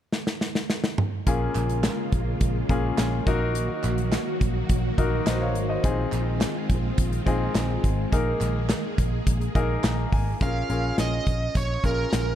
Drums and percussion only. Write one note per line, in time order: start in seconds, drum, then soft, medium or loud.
0.13 snare medium
0.27 snare medium
0.41 snare medium
0.55 snare medium
0.70 snare medium
0.84 snare medium
0.98 mid tom medium
1.27 kick loud
1.27 closed hi-hat loud
1.55 clap medium
1.55 closed hi-hat medium
1.69 closed hi-hat medium
1.84 snare loud
1.84 clap medium
1.84 closed hi-hat medium
2.12 kick medium
2.12 closed hi-hat medium
2.41 kick loud
2.41 closed hi-hat medium
2.69 kick medium
2.69 closed hi-hat medium
2.98 snare loud
2.98 clap medium
2.98 closed hi-hat medium
3.27 kick loud
3.27 closed hi-hat medium
3.55 closed hi-hat loud
3.84 clap medium
3.84 closed hi-hat medium
3.98 closed hi-hat soft
4.12 snare loud
4.12 clap medium
4.12 closed hi-hat medium
4.41 kick medium
4.41 closed hi-hat medium
4.69 kick medium
4.69 closed hi-hat medium
4.98 kick medium
4.98 closed hi-hat medium
5.27 snare loud
5.27 clap medium
5.27 closed hi-hat medium
5.55 closed hi-hat medium
5.84 kick loud
5.84 closed hi-hat loud
6.12 clap medium
6.12 closed hi-hat medium
6.41 snare loud
6.41 clap medium
6.41 closed hi-hat medium
6.70 kick medium
6.70 closed hi-hat medium
6.98 kick medium
6.98 closed hi-hat loud
7.12 closed hi-hat soft
7.27 kick medium
7.27 closed hi-hat medium
7.55 snare loud
7.55 clap medium
7.55 closed hi-hat medium
7.84 kick medium
7.84 closed hi-hat medium
8.13 kick loud
8.13 closed hi-hat loud
8.41 clap medium
8.41 closed hi-hat medium
8.69 snare loud
8.69 clap medium
8.69 closed hi-hat medium
8.98 kick medium
8.98 closed hi-hat medium
9.27 kick medium
9.27 closed hi-hat loud
9.41 closed hi-hat soft
9.55 kick medium
9.55 closed hi-hat medium
9.84 snare loud
9.84 clap medium
9.84 closed hi-hat medium
10.12 kick medium
10.12 open hi-hat medium
10.41 kick loud
10.41 closed hi-hat medium
10.70 closed hi-hat medium
10.98 snare medium
10.98 closed hi-hat medium
11.27 kick medium
11.27 closed hi-hat medium
11.55 kick medium
11.55 closed hi-hat medium
11.84 kick medium
11.84 closed hi-hat medium
12.13 snare loud
12.13 closed hi-hat medium